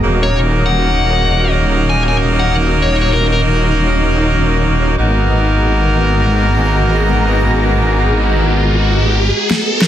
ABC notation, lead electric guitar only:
X:1
M:4/4
L:1/16
Q:"Swing 16ths" 1/4=97
K:Ebm
V:1 name="Lead electric guitar"
z d z2 g6 z2 a a z g | z2 d d B B z8 z2 | z16 | z16 |]